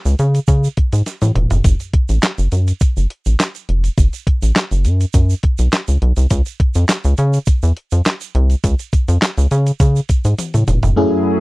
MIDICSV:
0, 0, Header, 1, 5, 480
1, 0, Start_track
1, 0, Tempo, 582524
1, 1356, Time_signature, 4, 2, 24, 8
1, 9394, End_track
2, 0, Start_track
2, 0, Title_t, "FM electric piano"
2, 0, Program_c, 0, 5
2, 9034, Note_on_c, 0, 42, 90
2, 9034, Note_on_c, 0, 57, 81
2, 9039, Note_on_c, 0, 61, 80
2, 9039, Note_on_c, 0, 64, 86
2, 9041, Note_on_c, 0, 68, 98
2, 9394, Note_off_c, 0, 42, 0
2, 9394, Note_off_c, 0, 57, 0
2, 9394, Note_off_c, 0, 61, 0
2, 9394, Note_off_c, 0, 64, 0
2, 9394, Note_off_c, 0, 68, 0
2, 9394, End_track
3, 0, Start_track
3, 0, Title_t, "Analog synth pad"
3, 0, Program_c, 1, 89
3, 9040, Note_on_c, 1, 57, 86
3, 9041, Note_on_c, 1, 54, 78
3, 9041, Note_on_c, 1, 64, 72
3, 9041, Note_on_c, 1, 68, 80
3, 9394, Note_off_c, 1, 54, 0
3, 9394, Note_off_c, 1, 57, 0
3, 9394, Note_off_c, 1, 64, 0
3, 9394, Note_off_c, 1, 68, 0
3, 9394, End_track
4, 0, Start_track
4, 0, Title_t, "Analog synth bass"
4, 0, Program_c, 2, 38
4, 45, Note_on_c, 2, 37, 104
4, 124, Note_off_c, 2, 37, 0
4, 160, Note_on_c, 2, 49, 101
4, 327, Note_off_c, 2, 49, 0
4, 394, Note_on_c, 2, 49, 94
4, 563, Note_off_c, 2, 49, 0
4, 766, Note_on_c, 2, 44, 84
4, 844, Note_off_c, 2, 44, 0
4, 1007, Note_on_c, 2, 45, 98
4, 1084, Note_off_c, 2, 45, 0
4, 1115, Note_on_c, 2, 28, 92
4, 1205, Note_off_c, 2, 28, 0
4, 1245, Note_on_c, 2, 29, 88
4, 1324, Note_off_c, 2, 29, 0
4, 1354, Note_on_c, 2, 30, 113
4, 1444, Note_off_c, 2, 30, 0
4, 1724, Note_on_c, 2, 33, 98
4, 1803, Note_off_c, 2, 33, 0
4, 1964, Note_on_c, 2, 30, 106
4, 2043, Note_off_c, 2, 30, 0
4, 2079, Note_on_c, 2, 42, 100
4, 2246, Note_off_c, 2, 42, 0
4, 2447, Note_on_c, 2, 30, 86
4, 2525, Note_off_c, 2, 30, 0
4, 2687, Note_on_c, 2, 33, 79
4, 2765, Note_off_c, 2, 33, 0
4, 3040, Note_on_c, 2, 29, 96
4, 3207, Note_off_c, 2, 29, 0
4, 3277, Note_on_c, 2, 30, 111
4, 3366, Note_off_c, 2, 30, 0
4, 3646, Note_on_c, 2, 33, 86
4, 3724, Note_off_c, 2, 33, 0
4, 3885, Note_on_c, 2, 30, 100
4, 3996, Note_on_c, 2, 42, 99
4, 4009, Note_off_c, 2, 30, 0
4, 4164, Note_off_c, 2, 42, 0
4, 4236, Note_on_c, 2, 42, 92
4, 4404, Note_off_c, 2, 42, 0
4, 4606, Note_on_c, 2, 35, 80
4, 4684, Note_off_c, 2, 35, 0
4, 4848, Note_on_c, 2, 37, 76
4, 4925, Note_off_c, 2, 37, 0
4, 4961, Note_on_c, 2, 35, 100
4, 5048, Note_off_c, 2, 35, 0
4, 5085, Note_on_c, 2, 36, 90
4, 5163, Note_off_c, 2, 36, 0
4, 5199, Note_on_c, 2, 37, 110
4, 5287, Note_off_c, 2, 37, 0
4, 5566, Note_on_c, 2, 41, 83
4, 5644, Note_off_c, 2, 41, 0
4, 5806, Note_on_c, 2, 37, 102
4, 5884, Note_off_c, 2, 37, 0
4, 5921, Note_on_c, 2, 49, 103
4, 6087, Note_off_c, 2, 49, 0
4, 6288, Note_on_c, 2, 40, 89
4, 6365, Note_off_c, 2, 40, 0
4, 6529, Note_on_c, 2, 41, 79
4, 6606, Note_off_c, 2, 41, 0
4, 6879, Note_on_c, 2, 36, 98
4, 7046, Note_off_c, 2, 36, 0
4, 7118, Note_on_c, 2, 37, 99
4, 7207, Note_off_c, 2, 37, 0
4, 7486, Note_on_c, 2, 41, 93
4, 7564, Note_off_c, 2, 41, 0
4, 7726, Note_on_c, 2, 37, 107
4, 7804, Note_off_c, 2, 37, 0
4, 7840, Note_on_c, 2, 49, 103
4, 8007, Note_off_c, 2, 49, 0
4, 8075, Note_on_c, 2, 49, 97
4, 8243, Note_off_c, 2, 49, 0
4, 8445, Note_on_c, 2, 44, 87
4, 8523, Note_off_c, 2, 44, 0
4, 8688, Note_on_c, 2, 45, 82
4, 8765, Note_off_c, 2, 45, 0
4, 8797, Note_on_c, 2, 28, 97
4, 8886, Note_off_c, 2, 28, 0
4, 8926, Note_on_c, 2, 29, 74
4, 9004, Note_off_c, 2, 29, 0
4, 9394, End_track
5, 0, Start_track
5, 0, Title_t, "Drums"
5, 45, Note_on_c, 9, 42, 31
5, 46, Note_on_c, 9, 82, 54
5, 127, Note_off_c, 9, 42, 0
5, 128, Note_off_c, 9, 82, 0
5, 156, Note_on_c, 9, 42, 69
5, 156, Note_on_c, 9, 82, 44
5, 238, Note_off_c, 9, 42, 0
5, 239, Note_off_c, 9, 82, 0
5, 285, Note_on_c, 9, 42, 50
5, 289, Note_on_c, 9, 82, 50
5, 368, Note_off_c, 9, 42, 0
5, 371, Note_off_c, 9, 82, 0
5, 391, Note_on_c, 9, 82, 67
5, 395, Note_on_c, 9, 36, 104
5, 397, Note_on_c, 9, 42, 78
5, 473, Note_off_c, 9, 82, 0
5, 478, Note_off_c, 9, 36, 0
5, 480, Note_off_c, 9, 42, 0
5, 530, Note_on_c, 9, 82, 47
5, 612, Note_off_c, 9, 82, 0
5, 635, Note_on_c, 9, 42, 75
5, 638, Note_on_c, 9, 36, 86
5, 718, Note_off_c, 9, 42, 0
5, 721, Note_off_c, 9, 36, 0
5, 762, Note_on_c, 9, 42, 51
5, 766, Note_on_c, 9, 82, 50
5, 845, Note_off_c, 9, 42, 0
5, 849, Note_off_c, 9, 82, 0
5, 875, Note_on_c, 9, 42, 78
5, 877, Note_on_c, 9, 38, 45
5, 879, Note_on_c, 9, 82, 72
5, 958, Note_off_c, 9, 42, 0
5, 959, Note_off_c, 9, 38, 0
5, 962, Note_off_c, 9, 82, 0
5, 1001, Note_on_c, 9, 42, 33
5, 1003, Note_on_c, 9, 48, 59
5, 1005, Note_on_c, 9, 82, 52
5, 1084, Note_off_c, 9, 42, 0
5, 1085, Note_off_c, 9, 48, 0
5, 1088, Note_off_c, 9, 82, 0
5, 1116, Note_on_c, 9, 45, 84
5, 1117, Note_on_c, 9, 42, 60
5, 1199, Note_off_c, 9, 45, 0
5, 1200, Note_off_c, 9, 42, 0
5, 1239, Note_on_c, 9, 42, 44
5, 1242, Note_on_c, 9, 43, 72
5, 1245, Note_on_c, 9, 82, 48
5, 1322, Note_off_c, 9, 42, 0
5, 1325, Note_off_c, 9, 43, 0
5, 1327, Note_off_c, 9, 82, 0
5, 1354, Note_on_c, 9, 42, 96
5, 1356, Note_on_c, 9, 36, 95
5, 1359, Note_on_c, 9, 82, 65
5, 1436, Note_off_c, 9, 42, 0
5, 1438, Note_off_c, 9, 36, 0
5, 1442, Note_off_c, 9, 82, 0
5, 1483, Note_on_c, 9, 42, 32
5, 1483, Note_on_c, 9, 82, 53
5, 1566, Note_off_c, 9, 42, 0
5, 1566, Note_off_c, 9, 82, 0
5, 1594, Note_on_c, 9, 42, 77
5, 1595, Note_on_c, 9, 36, 93
5, 1677, Note_off_c, 9, 36, 0
5, 1677, Note_off_c, 9, 42, 0
5, 1720, Note_on_c, 9, 82, 46
5, 1723, Note_on_c, 9, 42, 48
5, 1803, Note_off_c, 9, 82, 0
5, 1806, Note_off_c, 9, 42, 0
5, 1834, Note_on_c, 9, 82, 75
5, 1837, Note_on_c, 9, 42, 77
5, 1838, Note_on_c, 9, 38, 121
5, 1839, Note_on_c, 9, 39, 96
5, 1917, Note_off_c, 9, 82, 0
5, 1919, Note_off_c, 9, 42, 0
5, 1920, Note_off_c, 9, 38, 0
5, 1921, Note_off_c, 9, 39, 0
5, 1963, Note_on_c, 9, 42, 35
5, 1965, Note_on_c, 9, 82, 53
5, 2046, Note_off_c, 9, 42, 0
5, 2047, Note_off_c, 9, 82, 0
5, 2075, Note_on_c, 9, 42, 69
5, 2076, Note_on_c, 9, 82, 45
5, 2157, Note_off_c, 9, 42, 0
5, 2159, Note_off_c, 9, 82, 0
5, 2206, Note_on_c, 9, 42, 53
5, 2206, Note_on_c, 9, 82, 43
5, 2289, Note_off_c, 9, 42, 0
5, 2289, Note_off_c, 9, 82, 0
5, 2312, Note_on_c, 9, 82, 69
5, 2315, Note_on_c, 9, 36, 100
5, 2317, Note_on_c, 9, 42, 79
5, 2394, Note_off_c, 9, 82, 0
5, 2398, Note_off_c, 9, 36, 0
5, 2399, Note_off_c, 9, 42, 0
5, 2446, Note_on_c, 9, 82, 47
5, 2529, Note_off_c, 9, 82, 0
5, 2557, Note_on_c, 9, 42, 70
5, 2640, Note_off_c, 9, 42, 0
5, 2685, Note_on_c, 9, 82, 52
5, 2687, Note_on_c, 9, 42, 55
5, 2767, Note_off_c, 9, 82, 0
5, 2769, Note_off_c, 9, 42, 0
5, 2798, Note_on_c, 9, 42, 80
5, 2801, Note_on_c, 9, 38, 102
5, 2801, Note_on_c, 9, 39, 90
5, 2801, Note_on_c, 9, 82, 72
5, 2881, Note_off_c, 9, 42, 0
5, 2883, Note_off_c, 9, 38, 0
5, 2883, Note_off_c, 9, 82, 0
5, 2884, Note_off_c, 9, 39, 0
5, 2925, Note_on_c, 9, 42, 37
5, 2927, Note_on_c, 9, 82, 51
5, 3007, Note_off_c, 9, 42, 0
5, 3009, Note_off_c, 9, 82, 0
5, 3039, Note_on_c, 9, 42, 64
5, 3121, Note_off_c, 9, 42, 0
5, 3163, Note_on_c, 9, 42, 44
5, 3168, Note_on_c, 9, 82, 46
5, 3245, Note_off_c, 9, 42, 0
5, 3250, Note_off_c, 9, 82, 0
5, 3276, Note_on_c, 9, 42, 96
5, 3277, Note_on_c, 9, 36, 110
5, 3281, Note_on_c, 9, 82, 65
5, 3359, Note_off_c, 9, 36, 0
5, 3359, Note_off_c, 9, 42, 0
5, 3363, Note_off_c, 9, 82, 0
5, 3404, Note_on_c, 9, 42, 32
5, 3406, Note_on_c, 9, 82, 51
5, 3486, Note_off_c, 9, 42, 0
5, 3489, Note_off_c, 9, 82, 0
5, 3517, Note_on_c, 9, 36, 86
5, 3519, Note_on_c, 9, 42, 72
5, 3599, Note_off_c, 9, 36, 0
5, 3601, Note_off_c, 9, 42, 0
5, 3645, Note_on_c, 9, 82, 52
5, 3646, Note_on_c, 9, 42, 50
5, 3728, Note_off_c, 9, 42, 0
5, 3728, Note_off_c, 9, 82, 0
5, 3756, Note_on_c, 9, 42, 74
5, 3757, Note_on_c, 9, 38, 115
5, 3757, Note_on_c, 9, 39, 92
5, 3759, Note_on_c, 9, 82, 70
5, 3838, Note_off_c, 9, 42, 0
5, 3839, Note_off_c, 9, 38, 0
5, 3840, Note_off_c, 9, 39, 0
5, 3842, Note_off_c, 9, 82, 0
5, 3883, Note_on_c, 9, 42, 32
5, 3887, Note_on_c, 9, 82, 50
5, 3965, Note_off_c, 9, 42, 0
5, 3969, Note_off_c, 9, 82, 0
5, 3993, Note_on_c, 9, 42, 71
5, 3996, Note_on_c, 9, 82, 48
5, 4076, Note_off_c, 9, 42, 0
5, 4079, Note_off_c, 9, 82, 0
5, 4125, Note_on_c, 9, 82, 45
5, 4126, Note_on_c, 9, 42, 45
5, 4207, Note_off_c, 9, 82, 0
5, 4208, Note_off_c, 9, 42, 0
5, 4230, Note_on_c, 9, 82, 70
5, 4236, Note_on_c, 9, 36, 104
5, 4236, Note_on_c, 9, 42, 85
5, 4312, Note_off_c, 9, 82, 0
5, 4318, Note_off_c, 9, 36, 0
5, 4318, Note_off_c, 9, 42, 0
5, 4365, Note_on_c, 9, 82, 47
5, 4448, Note_off_c, 9, 82, 0
5, 4475, Note_on_c, 9, 42, 65
5, 4479, Note_on_c, 9, 36, 82
5, 4557, Note_off_c, 9, 42, 0
5, 4561, Note_off_c, 9, 36, 0
5, 4600, Note_on_c, 9, 82, 54
5, 4606, Note_on_c, 9, 42, 57
5, 4683, Note_off_c, 9, 82, 0
5, 4688, Note_off_c, 9, 42, 0
5, 4716, Note_on_c, 9, 82, 68
5, 4718, Note_on_c, 9, 42, 81
5, 4720, Note_on_c, 9, 38, 109
5, 4721, Note_on_c, 9, 39, 89
5, 4799, Note_off_c, 9, 82, 0
5, 4800, Note_off_c, 9, 42, 0
5, 4803, Note_off_c, 9, 38, 0
5, 4803, Note_off_c, 9, 39, 0
5, 4843, Note_on_c, 9, 82, 50
5, 4844, Note_on_c, 9, 42, 36
5, 4925, Note_off_c, 9, 82, 0
5, 4926, Note_off_c, 9, 42, 0
5, 4960, Note_on_c, 9, 42, 65
5, 5042, Note_off_c, 9, 42, 0
5, 5080, Note_on_c, 9, 42, 40
5, 5081, Note_on_c, 9, 82, 50
5, 5162, Note_off_c, 9, 42, 0
5, 5163, Note_off_c, 9, 82, 0
5, 5195, Note_on_c, 9, 42, 98
5, 5196, Note_on_c, 9, 82, 60
5, 5197, Note_on_c, 9, 36, 101
5, 5277, Note_off_c, 9, 42, 0
5, 5279, Note_off_c, 9, 82, 0
5, 5280, Note_off_c, 9, 36, 0
5, 5320, Note_on_c, 9, 82, 48
5, 5324, Note_on_c, 9, 42, 35
5, 5402, Note_off_c, 9, 82, 0
5, 5407, Note_off_c, 9, 42, 0
5, 5437, Note_on_c, 9, 36, 88
5, 5438, Note_on_c, 9, 42, 76
5, 5520, Note_off_c, 9, 36, 0
5, 5520, Note_off_c, 9, 42, 0
5, 5560, Note_on_c, 9, 82, 51
5, 5565, Note_on_c, 9, 42, 50
5, 5642, Note_off_c, 9, 82, 0
5, 5647, Note_off_c, 9, 42, 0
5, 5674, Note_on_c, 9, 82, 80
5, 5676, Note_on_c, 9, 42, 76
5, 5677, Note_on_c, 9, 38, 106
5, 5678, Note_on_c, 9, 39, 88
5, 5757, Note_off_c, 9, 82, 0
5, 5758, Note_off_c, 9, 42, 0
5, 5759, Note_off_c, 9, 38, 0
5, 5760, Note_off_c, 9, 39, 0
5, 5802, Note_on_c, 9, 42, 34
5, 5804, Note_on_c, 9, 82, 52
5, 5884, Note_off_c, 9, 42, 0
5, 5886, Note_off_c, 9, 82, 0
5, 5912, Note_on_c, 9, 82, 46
5, 5915, Note_on_c, 9, 42, 69
5, 5995, Note_off_c, 9, 82, 0
5, 5997, Note_off_c, 9, 42, 0
5, 6044, Note_on_c, 9, 82, 48
5, 6046, Note_on_c, 9, 42, 50
5, 6126, Note_off_c, 9, 82, 0
5, 6129, Note_off_c, 9, 42, 0
5, 6148, Note_on_c, 9, 82, 63
5, 6157, Note_on_c, 9, 36, 104
5, 6159, Note_on_c, 9, 42, 85
5, 6231, Note_off_c, 9, 82, 0
5, 6239, Note_off_c, 9, 36, 0
5, 6241, Note_off_c, 9, 42, 0
5, 6283, Note_on_c, 9, 82, 47
5, 6366, Note_off_c, 9, 82, 0
5, 6399, Note_on_c, 9, 42, 65
5, 6481, Note_off_c, 9, 42, 0
5, 6520, Note_on_c, 9, 82, 51
5, 6528, Note_on_c, 9, 42, 52
5, 6603, Note_off_c, 9, 82, 0
5, 6611, Note_off_c, 9, 42, 0
5, 6635, Note_on_c, 9, 82, 66
5, 6640, Note_on_c, 9, 42, 77
5, 6642, Note_on_c, 9, 38, 103
5, 6643, Note_on_c, 9, 39, 89
5, 6717, Note_off_c, 9, 82, 0
5, 6723, Note_off_c, 9, 42, 0
5, 6725, Note_off_c, 9, 38, 0
5, 6725, Note_off_c, 9, 39, 0
5, 6763, Note_on_c, 9, 82, 58
5, 6765, Note_on_c, 9, 42, 36
5, 6846, Note_off_c, 9, 82, 0
5, 6848, Note_off_c, 9, 42, 0
5, 6879, Note_on_c, 9, 42, 65
5, 6962, Note_off_c, 9, 42, 0
5, 7002, Note_on_c, 9, 42, 43
5, 7006, Note_on_c, 9, 82, 45
5, 7085, Note_off_c, 9, 42, 0
5, 7089, Note_off_c, 9, 82, 0
5, 7117, Note_on_c, 9, 42, 101
5, 7118, Note_on_c, 9, 36, 98
5, 7121, Note_on_c, 9, 82, 63
5, 7200, Note_off_c, 9, 36, 0
5, 7200, Note_off_c, 9, 42, 0
5, 7203, Note_off_c, 9, 82, 0
5, 7244, Note_on_c, 9, 82, 51
5, 7246, Note_on_c, 9, 42, 33
5, 7327, Note_off_c, 9, 82, 0
5, 7328, Note_off_c, 9, 42, 0
5, 7357, Note_on_c, 9, 36, 86
5, 7358, Note_on_c, 9, 82, 50
5, 7360, Note_on_c, 9, 42, 75
5, 7440, Note_off_c, 9, 36, 0
5, 7440, Note_off_c, 9, 82, 0
5, 7442, Note_off_c, 9, 42, 0
5, 7485, Note_on_c, 9, 42, 54
5, 7487, Note_on_c, 9, 82, 52
5, 7568, Note_off_c, 9, 42, 0
5, 7569, Note_off_c, 9, 82, 0
5, 7596, Note_on_c, 9, 42, 75
5, 7597, Note_on_c, 9, 38, 107
5, 7598, Note_on_c, 9, 39, 93
5, 7600, Note_on_c, 9, 82, 77
5, 7679, Note_off_c, 9, 42, 0
5, 7680, Note_off_c, 9, 38, 0
5, 7681, Note_off_c, 9, 39, 0
5, 7683, Note_off_c, 9, 82, 0
5, 7724, Note_on_c, 9, 42, 31
5, 7729, Note_on_c, 9, 82, 53
5, 7807, Note_off_c, 9, 42, 0
5, 7811, Note_off_c, 9, 82, 0
5, 7837, Note_on_c, 9, 42, 67
5, 7840, Note_on_c, 9, 82, 47
5, 7919, Note_off_c, 9, 42, 0
5, 7923, Note_off_c, 9, 82, 0
5, 7965, Note_on_c, 9, 42, 53
5, 7967, Note_on_c, 9, 82, 50
5, 8047, Note_off_c, 9, 42, 0
5, 8050, Note_off_c, 9, 82, 0
5, 8074, Note_on_c, 9, 82, 64
5, 8075, Note_on_c, 9, 36, 99
5, 8075, Note_on_c, 9, 42, 86
5, 8157, Note_off_c, 9, 36, 0
5, 8157, Note_off_c, 9, 82, 0
5, 8158, Note_off_c, 9, 42, 0
5, 8209, Note_on_c, 9, 82, 45
5, 8292, Note_off_c, 9, 82, 0
5, 8314, Note_on_c, 9, 42, 70
5, 8318, Note_on_c, 9, 36, 81
5, 8319, Note_on_c, 9, 82, 58
5, 8396, Note_off_c, 9, 42, 0
5, 8401, Note_off_c, 9, 36, 0
5, 8401, Note_off_c, 9, 82, 0
5, 8443, Note_on_c, 9, 82, 50
5, 8445, Note_on_c, 9, 42, 57
5, 8526, Note_off_c, 9, 82, 0
5, 8528, Note_off_c, 9, 42, 0
5, 8557, Note_on_c, 9, 42, 77
5, 8557, Note_on_c, 9, 48, 49
5, 8560, Note_on_c, 9, 82, 66
5, 8639, Note_off_c, 9, 48, 0
5, 8640, Note_off_c, 9, 42, 0
5, 8643, Note_off_c, 9, 82, 0
5, 8684, Note_on_c, 9, 42, 35
5, 8685, Note_on_c, 9, 47, 59
5, 8688, Note_on_c, 9, 82, 57
5, 8766, Note_off_c, 9, 42, 0
5, 8768, Note_off_c, 9, 47, 0
5, 8770, Note_off_c, 9, 82, 0
5, 8797, Note_on_c, 9, 82, 48
5, 8798, Note_on_c, 9, 45, 81
5, 8799, Note_on_c, 9, 42, 63
5, 8879, Note_off_c, 9, 82, 0
5, 8880, Note_off_c, 9, 45, 0
5, 8882, Note_off_c, 9, 42, 0
5, 8922, Note_on_c, 9, 42, 45
5, 8925, Note_on_c, 9, 43, 76
5, 8929, Note_on_c, 9, 82, 43
5, 9004, Note_off_c, 9, 42, 0
5, 9007, Note_off_c, 9, 43, 0
5, 9011, Note_off_c, 9, 82, 0
5, 9394, End_track
0, 0, End_of_file